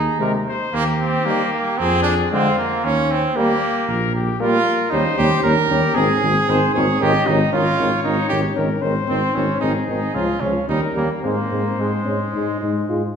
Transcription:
Already playing: tuba D#2, trumpet D#4 G#4
0.19 trombone C3, french horn G#3, trumpet A#4
0.47 trumpet C5
0.72 tuba D#2, trumpet A#3 G4
1.00 trumpet C4
1.26 trombone D#3, french horn G3, trumpet A#3
1.53 trumpet A#3
1.78 tuba F2, trumpet C4 G#4
2.03 trumpet D4
2.32 trombone D3, french horn G#3, trumpet C4 F4
2.59 trumpet A#3
2.84 tuba D#2, trumpet C#4
3.12 trumpet C4
3.35 trombone G3, french horn A#3, trumpet A#3 G4
3.88 tuba A#1, trumpet A#4
4.16 trumpet G4
4.40 trombone G3, french horn A#3, trumpet F4 A#4
4.91 tuba D#2, trombone G3, french horn C#4, trumpet D#4 C5
5.18 tuba D#2, trombone G3, french horn C#4, trumpet G4
5.44 tuba D#2, trombone G3, french horn C#4, trumpet A#4
5.70 tuba D#2, trombone G3, french horn C#4, trumpet G4
5.95 tuba G#1, trombone D#3, french horn C4, trumpet G#4
6.21 tuba G#1, trombone D#3, french horn C4
6.48 tuba G#1, trombone D#3, french horn C4, trumpet C5
6.74 tuba G#1, trombone D#3, french horn C4, trumpet G#4 C#5
7.00 tuba G#1, trombone D#3, french horn C#4, trumpet G4 D#5
7.26 tuba G#1, trombone D#3, french horn C#4, trumpet D#4
7.52 tuba G#1, trombone D#3, french horn C#4, trumpet F4 C#5
7.77 tuba G#1, trombone D#3, french horn C#4
8.04 tuba G#1, trombone D#3, french horn C#4, trumpet D#4
8.29 tuba G#1, trombone D#3, french horn C#4, trumpet G4
8.56 tuba G#1, trombone D#3, french horn C#4, trumpet A#4
8.81 tuba G#1, trombone D#3, french horn C#4, trumpet C5
9.08 tuba G#1, trombone D#3, french horn C4, trumpet C4
9.34 tuba G#1, trombone D#3, french horn C4, trumpet C#4
9.60 tuba G#1, trombone D#3, french horn C4, trumpet D#4 G#4
9.86 tuba G#1, trombone D#3, french horn C4, trumpet D#4
10.14 tuba C#2, trombone F3, french horn C#4, trumpet F4
10.40 tuba C#2, trombone F3, french horn C#4, trumpet C#4
10.67 tuba D#2, trombone G3, french horn C#4, trumpet D#4 A#4
10.94 tuba D#2, trombone G3, trumpet A#3, french horn C#4
11.22 tuba G#2, trombone G#3, trumpet A#3 C5, french horn C4
11.50 tuba G#2, trombone G#3, french horn C4
11.77 tuba G#2, trombone G#3, trumpet G#3, french horn C4
12.05 tuba G#2, trombone G#3, french horn C#4
12.33 tuba G#2, trombone G#3, french horn D#4
12.61 tuba G#2, trombone G#3, french horn D#4
12.89 tuba G#2, trombone G#3, french horn F4

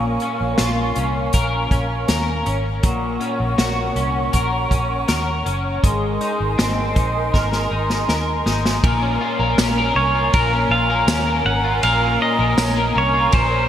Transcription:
Already playing: fingered electric bass A#1, clean electric guitar A#2 C#4 F4 A#4, flute section A#4 F5 G#5 C#6
0.20 clean electric guitar C#4, closed hi-hat
0.41 fingered electric bass A#1
0.58 fingered electric bass A#1, clean electric guitar F4, snare, closed hi-hat
0.96 fingered electric bass C2, clean electric guitar C#4, closed hi-hat
1.33 fingered electric bass A#1, clean electric guitar A#4, kick, closed hi-hat
1.71 fingered electric bass A#1, clean electric guitar C#4, kick, closed hi-hat
2.08 fingered electric bass D#2, clean electric guitar A#4, snare, closed hi-hat
2.46 fingered electric bass G#1, clean electric guitar C#4, closed hi-hat
2.82 fingered electric bass A#1, clean electric guitar A#2, flute section C#5 F#5 C#6, kick, closed hi-hat
3.20 clean electric guitar C#4, closed hi-hat
3.40 fingered electric bass A#1
3.58 fingered electric bass A#1, clean electric guitar F#4, snare, closed hi-hat
3.96 fingered electric bass C2, clean electric guitar C#4, closed hi-hat
4.33 fingered electric bass A#1, clean electric guitar A#4, kick, closed hi-hat
4.71 fingered electric bass A#1, clean electric guitar C#4, kick, closed hi-hat
5.08 fingered electric bass D#2, clean electric guitar A#4, snare, closed hi-hat
5.46 fingered electric bass F#1, clean electric guitar C#4, closed hi-hat
5.82 fingered electric bass G#1, clean electric guitar G#3, flute section A#4 D#5 G#5 C6, kick, closed hi-hat
6.21 clean electric guitar D#4, closed hi-hat
6.40 fingered electric bass G#1
6.58 fingered electric bass G#1, clean electric guitar C4, snare, closed hi-hat
6.95 fingered electric bass A#1, clean electric guitar D#4, kick, closed hi-hat
7.34 fingered electric bass G#1, clean electric guitar A#4, kick, snare
7.52 snare
7.71 fingered electric bass G#1, clean electric guitar D#4
7.90 snare
8.09 fingered electric bass D#2, clean electric guitar A#4, snare
8.46 fingered electric bass G#1, clean electric guitar D#4, snare
8.66 snare
8.81 fingered electric bass A#1, clean electric guitar A#2 A#4, flute section A#4, kick, ride
9.02 clean electric guitar C#4
9.21 clean electric guitar F4
9.39 fingered electric bass A#1, clean electric guitar A#4
9.58 fingered electric bass A#1, clean electric guitar C#4, snare, ride, tambourine
9.78 clean electric guitar A#4
9.95 fingered electric bass C2, clean electric guitar C#4, pedal steel guitar C#5
10.15 clean electric guitar F4
10.33 fingered electric bass A#1, clean electric guitar A#2 A#4, pedal steel guitar A#4, kick, ride
10.52 clean electric guitar C#4
10.69 fingered electric bass A#1, clean electric guitar F4, pedal steel guitar F5
10.90 clean electric guitar A#4
11.07 fingered electric bass D#2, clean electric guitar C#4, snare, ride, tambourine
11.27 clean electric guitar A#4
11.45 fingered electric bass G#1, clean electric guitar C#4, pedal steel guitar F#5
11.64 clean electric guitar F4
11.83 fingered electric bass A#1, clean electric guitar A#2 A#4, pedal steel guitar F5, ride
12.01 clean electric guitar C#4
12.20 clean electric guitar F4, pedal steel guitar D#5
12.39 fingered electric bass A#1, clean electric guitar A#4
12.58 clean electric guitar C#4, snare, ride, tambourine
12.76 clean electric guitar A#4
12.95 fingered electric bass C2, clean electric guitar C#4, pedal steel guitar C#5
13.13 clean electric guitar F4
13.32 fingered electric bass A#1, clean electric guitar A#2 A#4, pedal steel guitar C5, kick, ride
13.51 clean electric guitar C#4

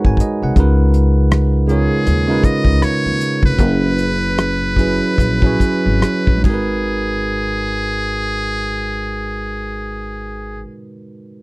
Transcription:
Already playing: tine electric piano G#3 D#4 F#4 G#4 A#4 B4 C#5 F#5 G#5 A#5 B5
0.05 upright bass G#1, tine electric piano G#5, kick
0.17 tine electric piano D#5, kick, closed hi-hat
0.42 upright bass C2, tine electric piano F#5
0.56 upright bass C#2, tine electric piano C#3 G#3 D#4 F4 A#4 B4, kick, closed hi-hat
0.94 closed hi-hat
1.31 cross-stick, closed hi-hat
1.67 tine electric piano C#3 G#3 D#4 F4 A#4, muted trumpet G#4, closed hi-hat
1.71 tine electric piano C#5
2.07 upright bass D#2, closed hi-hat
2.27 tine electric piano C#3 G#3 D#4 F4 A#4
2.31 tine electric piano B4
2.44 muted trumpet D#5, kick, closed hi-hat
2.65 upright bass C#2, kick
2.82 muted trumpet C#5, cross-stick, closed hi-hat
3.06 upright bass D#2
3.21 closed hi-hat
3.43 upright bass F1, muted trumpet B4, kick
3.57 upright bass F#1, tine electric piano F#3 C#4 E4 G#4, kick, closed hi-hat
3.61 tine electric piano A#4
3.68 tine electric piano B4
3.98 closed hi-hat
4.38 cross-stick, closed hi-hat
4.76 tine electric piano F#3 C#4 E4 G#4, kick, closed hi-hat
4.81 tine electric piano B4
5.18 upright bass A#1, kick, closed hi-hat
5.42 tine electric piano F#3 C#4 E4 G#4, kick
5.47 tine electric piano C#5
5.60 kick, closed hi-hat
5.86 upright bass G#1
6.02 muted upright bass stroke, cross-stick, closed hi-hat
6.27 upright bass A#1, kick
6.37 tine electric piano G#3
6.41 upright bass G#1, tine electric piano D#4, kick, ride
6.45 tine electric piano F#4, muted trumpet G#4
6.50 tine electric piano A#4
6.54 tine electric piano B4

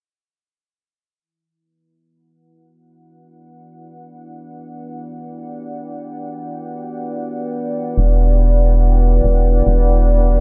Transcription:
1.21 ambient pad E4
1.59 ambient pad B4
2.13 ambient pad F#5
2.50 ambient pad D5
3.59 ambient pad G5
7.97 analog synth bass E1
9.24 analog synth bass E1
9.67 analog synth bass E1

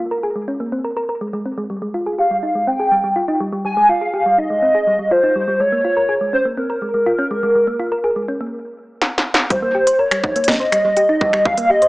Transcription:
0.00 synth arpeggio sound F4
0.11 synth arpeggio sound A#4
0.23 synth arpeggio sound G#4
0.36 synth arpeggio sound G#3
0.48 synth arpeggio sound C#4
0.60 synth arpeggio sound A#3
0.72 synth arpeggio sound C4
0.85 synth arpeggio sound A#4
0.97 synth arpeggio sound A#4
1.09 synth arpeggio sound A#4
1.21 synth arpeggio sound G#3
1.33 synth arpeggio sound G#3
1.46 synth arpeggio sound C4
1.58 synth arpeggio sound G#3
1.70 synth arpeggio sound G3
1.82 synth arpeggio sound G#3
1.94 synth arpeggio sound F4
2.06 synth arpeggio sound G#4
2.19 synth arpeggio sound G4, soft synth lead F5
2.31 synth arpeggio sound G3
2.43 synth arpeggio sound D#4
2.55 synth arpeggio sound G#3
2.67 synth arpeggio sound C4, soft synth lead G5
2.80 synth arpeggio sound G#4
2.92 synth arpeggio sound G3
3.04 synth arpeggio sound G3
3.16 synth arpeggio sound F4
3.28 synth arpeggio sound D#4
3.40 synth arpeggio sound G3
3.53 synth arpeggio sound G3
3.65 synth arpeggio sound G3, soft synth lead G#5
3.77 synth arpeggio sound G#3
3.89 synth arpeggio sound F4, soft synth lead F5
4.01 synth arpeggio sound G#4
4.14 synth arpeggio sound G4
4.26 synth arpeggio sound G3
4.38 synth arpeggio sound D#4, soft synth lead D#5
4.50 synth arpeggio sound G#3
4.62 synth arpeggio sound C4
4.75 synth arpeggio sound G#4
4.87 synth arpeggio sound G3
4.99 synth arpeggio sound G3
5.11 synth arpeggio sound F4, soft synth lead C5
5.23 synth arpeggio sound D#4
5.36 synth arpeggio sound G3
5.48 synth arpeggio sound G3
5.60 synth arpeggio sound G#3, soft synth lead C#5
5.72 synth arpeggio sound A#3
5.85 synth arpeggio sound F4
5.97 synth arpeggio sound A#4
6.09 synth arpeggio sound G#4
6.21 synth arpeggio sound G#3
6.33 synth arpeggio sound C#4, soft synth lead C5
6.45 synth arpeggio sound A#3
6.57 synth arpeggio sound C4, soft synth lead A#4
6.70 synth arpeggio sound A#4
6.82 synth arpeggio sound G#3
6.94 synth arpeggio sound G#3
7.06 synth arpeggio sound F4
7.19 synth arpeggio sound C#4
7.31 synth arpeggio sound G#3
7.43 synth arpeggio sound G#3
7.55 synth arpeggio sound G#3
7.67 synth arpeggio sound A#3
7.80 synth arpeggio sound F4
7.92 synth arpeggio sound A#4
8.04 synth arpeggio sound G#4
8.16 synth arpeggio sound G#3
8.28 synth arpeggio sound C#4
8.41 synth arpeggio sound A#3
9.02 snare
9.18 snare
9.34 snare
9.50 synth arpeggio sound G3, soft synth lead C5, kick, closed hi-hat
9.62 synth arpeggio sound A#3
9.75 synth arpeggio sound G4
9.87 synth arpeggio sound C5, closed hi-hat
9.99 synth arpeggio sound A#4, soft synth lead C#5
10.11 synth arpeggio sound G3, finger snap, closed hi-hat
10.24 synth arpeggio sound D#4, kick
10.36 synth arpeggio sound A#3, closed hi-hat
10.44 closed hi-hat
10.48 synth arpeggio sound C4, soft synth lead D#5, finger snap, kick, snare
10.52 closed hi-hat
10.60 synth arpeggio sound C5
10.72 synth arpeggio sound G3, finger snap, closed hi-hat
10.85 synth arpeggio sound G3
10.97 synth arpeggio sound G4, closed hi-hat
11.09 synth arpeggio sound D#4
11.21 synth arpeggio sound G3, kick
11.33 synth arpeggio sound G3, finger snap
11.45 synth arpeggio sound G3, soft synth lead F5, kick
11.58 synth arpeggio sound A#3, closed hi-hat
11.70 synth arpeggio sound G4, soft synth lead D#5
11.82 synth arpeggio sound C5, closed hi-hat

